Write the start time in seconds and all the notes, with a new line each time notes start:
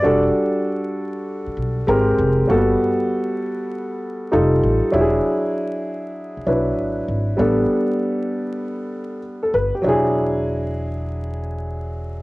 Already playing: D5
0.02 E1 G3 D4 F#4 A4
1.47 muted upright bass stroke
1.57 B1
1.87 G#1 G#3 C4 G4 A#4
2.19 F1
2.47 G1 G3 A#3 F#4 A4
2.55 B3
4.32 F1 G3 D#4 F4 A4
4.63 A1
4.91 E1 F#3 D4 E4 G4
5.01 G#4
6.37 muted upright bass stroke
6.46 B1 F#3 D4 E4 B4
6.78 G#1
7.08 G#1
7.37 A1 G3 B3 D4 A4
9.43 A4
9.54 G1 B4
9.75 G4
9.82 E1 F#3 D4
9.87 E4 G#4